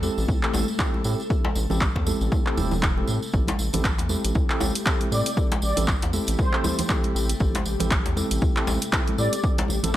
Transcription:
Already playing: ambient pad C3 A3 A4
0.03 tine electric piano C4 E4 G4 A4, tambourine, high conga
0.18 analog synth bass A1, tambourine
0.28 kick, tambourine, djembe bass
0.43 tine electric piano C4 E4 G4 A4, clap
0.54 analog synth bass A1, tambourine, djembe slap, high conga, djembe tone
0.68 tambourine
0.79 tine electric piano C4 E4 G4 A4, kick, clap, tambourine, djembe tone
0.94 high conga
1.04 analog synth bass A2, tine electric piano C4 E4 G4 A4, tambourine
1.20 tambourine
1.30 tine electric piano C4 E4 G4 A4, kick, tambourine
1.45 djembe slap, high conga
1.55 analog synth bass A1, tambourine, djembe tone
1.70 analog synth bass A1, tine electric piano C4 E4 G4 A4, tambourine, high conga, low conga
1.81 kick, clap, tambourine
1.95 analog synth bass E2, kick, djembe slap
2.06 tine electric piano C4 E4 G4 A4, tambourine, high conga
2.21 analog synth bass A1, tambourine
2.32 kick, tambourine, djembe tone, high conga
2.46 tine electric piano C4 E4 G4 A4, clap
2.57 analog synth bass E1, tine electric piano C4 E4 G4 A4, tambourine, high conga, low conga, djembe bass
2.71 tambourine, djembe tone, low conga
2.83 kick, clap, tambourine, djembe tone
2.97 tine electric piano C4 E4 G4 A4, high conga
3.07 analog synth bass A2, tambourine
3.22 tambourine
3.33 analog synth bass A1, tine electric piano C4 E4 G4 A4, ambient pad G4, kick, tambourine
3.48 closed hi-hat, djembe slap, high conga
3.59 analog synth bass A1, tambourine
3.73 analog synth bass A1, tine electric piano C4 E4 G4 A4, closed hi-hat, tambourine, high conga, low conga
3.84 kick, clap, tambourine
3.98 analog synth bass E2, closed hi-hat, djembe slap
4.09 tine electric piano C4 E4 G4 A4, tambourine, high conga
4.25 analog synth bass A1, closed hi-hat, tambourine
4.35 kick, tambourine, djembe bass
4.50 tine electric piano C4 E4 G4 A4, clap
4.60 analog synth bass A1, tambourine, djembe slap, djembe tone, high conga
4.75 closed hi-hat, tambourine
4.86 tine electric piano C4 E4 G4 A4, kick, clap, tambourine, djembe tone
5.01 closed hi-hat, high conga
5.12 analog synth bass A2, tine electric piano C4 E4 G4 A4, analog synth lead D5, tambourine
5.26 analog synth lead D5, closed hi-hat, tambourine
5.37 tine electric piano C4 E4 G4 A4, kick, tambourine
5.52 closed hi-hat, djembe slap, high conga
5.62 analog synth bass A1, analog synth lead D5, tambourine
5.77 analog synth bass A1, tine electric piano C4 E4 G4 A4, closed hi-hat, tambourine, high conga, low conga
5.88 kick, clap, tambourine
6.02 analog synth bass E2, closed hi-hat, djembe slap
6.13 tine electric piano C4 E4 G4 A4, tambourine, high conga
6.27 analog synth bass A1, closed hi-hat, tambourine
6.39 analog synth lead C5, kick, tambourine, high conga, djembe tone
6.53 tine electric piano C4 E4 G4 A4, clap
6.64 tambourine, high conga, low conga, djembe bass
6.79 closed hi-hat, tambourine, djembe tone, low conga
6.89 tine electric piano C4 E4 G4 A4, kick, clap, tambourine, djembe tone
7.04 closed hi-hat, high conga
7.15 analog synth bass A1, tine electric piano C4 E4 G4 A4, tambourine
7.29 closed hi-hat, tambourine
7.40 analog synth bass A1, tine electric piano C4 E4 G4 A4, kick, tambourine
7.55 closed hi-hat, djembe slap, high conga
7.65 analog synth bass A1, tambourine
7.80 analog synth bass A1, tine electric piano C4 E4 G4 A4, closed hi-hat, tambourine, high conga, low conga
7.91 kick, clap, tambourine
8.06 analog synth bass E2, closed hi-hat, djembe slap
8.17 tine electric piano C4 E4 G4 A4, tambourine, high conga
8.31 analog synth bass A1, closed hi-hat, tambourine
8.42 kick, tambourine, djembe bass
8.56 tine electric piano C4 E4 G4 A4, clap
8.67 analog synth bass A1, tambourine, djembe slap, high conga, djembe tone
8.82 closed hi-hat, tambourine
8.93 tine electric piano C4 E4 G4 A4, kick, clap, tambourine, djembe tone
9.08 closed hi-hat, high conga
9.18 analog synth bass A2, tine electric piano C4 E4 G4 A4, analog synth lead D5, tambourine
9.33 analog synth lead D5, closed hi-hat, tambourine
9.43 tine electric piano C4 E4 G4 A4, kick, tambourine
9.58 closed hi-hat, djembe slap, high conga
9.68 analog synth bass A1, tambourine, djembe tone
9.83 analog synth bass A1, tine electric piano C4 E4 G4 A4, analog synth lead A4, closed hi-hat, tambourine, high conga, low conga

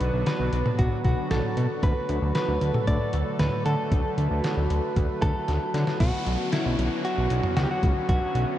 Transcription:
Already playing: analog synth pad D3 F#3 B3 D4 F#4, clean electric guitar B4
0.01 analog synth bass B1, closed hi-hat
0.14 analog synth bass B1
0.26 clean electric guitar B4, snare, closed hi-hat
0.40 analog synth bass B1
0.53 analog synth bass B1, closed hi-hat
0.66 mid tom
0.79 analog synth bass B1, clean electric guitar F#4, kick, closed hi-hat
1.05 analog synth bass B1, clean electric guitar F#4, kick, closed hi-hat
1.31 analog synth bass B1, clean electric guitar A4, snare, closed hi-hat, mid tom
1.57 analog synth bass B2, closed hi-hat
1.83 analog synth bass D2, analog synth pad D3 A3 A4, clean electric guitar B4, kick, closed hi-hat
2.09 analog synth bass D2, closed hi-hat
2.22 analog synth bass D2
2.35 clean electric guitar B4, snare, closed hi-hat
2.48 analog synth bass D2
2.61 analog synth bass D2, closed hi-hat
2.74 mid tom
2.88 analog synth bass D2, clean electric guitar D5, kick, closed hi-hat
3.13 analog synth bass D2, closed hi-hat
3.39 analog synth bass D2, clean electric guitar B4, snare, closed hi-hat, mid tom
3.66 analog synth bass D3, clean electric guitar A4, closed hi-hat
3.92 analog synth bass D2, analog synth pad B4, kick, closed hi-hat
4.18 analog synth bass D2, closed hi-hat
4.31 analog synth bass D2
4.44 snare, closed hi-hat
4.57 analog synth bass D2
4.70 analog synth bass D2, closed hi-hat
4.96 analog synth bass D2, kick, closed hi-hat
5.22 analog synth bass D2, clean electric guitar A4, kick, closed hi-hat
5.48 analog synth bass D2, snare, closed hi-hat
5.74 analog synth bass D3, snare, closed hi-hat
5.87 snare
6.00 analog synth bass B1, analog synth pad D3 F#3 B3 C#4 F#4, clean electric guitar F#4, kick, closed hi-hat, crash, downlifter
6.26 analog synth bass B1, closed hi-hat
6.52 clean electric guitar E4, snare, closed hi-hat
6.65 analog synth bass B1
6.79 analog synth bass B1, closed hi-hat
7.05 clean electric guitar F#4, closed hi-hat
7.18 analog synth bass B1
7.30 analog synth bass B1, closed hi-hat
7.44 mid tom
7.57 analog synth bass C#2, clean electric guitar F#4, snare, closed hi-hat
7.64 clean electric guitar G4
7.71 clean electric guitar F#4
7.83 analog synth bass C#2, kick, closed hi-hat
8.09 analog synth bass B1, analog synth pad E4, clean electric guitar F#4, kick, closed hi-hat
8.35 analog synth bass B1, closed hi-hat

